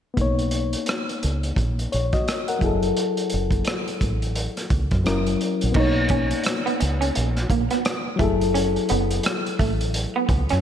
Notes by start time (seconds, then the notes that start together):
0.14 A#3 B3, kick, closed hi-hat
0.19 B1 D#4 C#5
0.39 closed hi-hat
0.51 closed hi-hat
0.73 closed hi-hat
0.86 cross-stick, closed hi-hat
1.09 closed hi-hat
1.23 C#2, closed hi-hat
1.43 closed hi-hat
1.56 A#1, kick, closed hi-hat
1.79 closed hi-hat
1.92 A#1 C#5, closed hi-hat
2.13 F#4 D#5, kick, cross-stick, closed hi-hat
2.28 cross-stick, closed hi-hat
2.48 A#4 F#5, closed hi-hat
2.59 F#1 F#3 E4, kick, closed hi-hat
2.64 G#4 A4
2.83 closed hi-hat
2.97 closed hi-hat
3.17 closed hi-hat
3.30 closed hi-hat
3.34 F#1
3.51 kick, closed hi-hat
3.65 cross-stick, closed hi-hat
3.88 closed hi-hat
4.01 A1, kick, closed hi-hat
4.22 closed hi-hat
4.35 closed hi-hat
4.57 cross-stick, closed hi-hat
4.70 C#2, kick, closed hi-hat
4.91 F#2, kick, cross-stick, closed hi-hat
5.04 F#1 F#3 C#4 E4 A#4, cross-stick, closed hi-hat
5.26 closed hi-hat
5.41 closed hi-hat
5.61 A#1, closed hi-hat
5.72 B1 A#3 B3, kick, crash
5.76 D#4 C#5
6.09 C#4, kick, closed hi-hat
6.31 closed hi-hat
6.44 cross-stick, closed hi-hat
6.66 B3, closed hi-hat
6.80 C#2, muted clean electric guitar stroke, closed hi-hat
7.01 C#4, closed hi-hat
7.15 A#1, muted clean electric guitar stroke, closed hi-hat
7.37 cross-stick, closed hi-hat
7.50 A#1 A#3, kick, closed hi-hat
7.71 B3, cross-stick, closed hi-hat
7.85 cross-stick, closed hi-hat
8.16 F#3 A3 E4, kick
8.20 F#1 G#4 A4, closed hi-hat
8.41 closed hi-hat
8.54 C#4, closed hi-hat
8.76 closed hi-hat
8.89 F#1 B3, closed hi-hat
9.11 closed hi-hat
9.23 cross-stick, closed hi-hat
9.46 closed hi-hat
9.59 A1 A3, kick, closed hi-hat
9.81 closed hi-hat
9.94 closed hi-hat
10.16 B3
10.29 C#2, muted clean electric guitar stroke, kick, closed hi-hat
10.49 F#2 C#4, cross-stick, closed hi-hat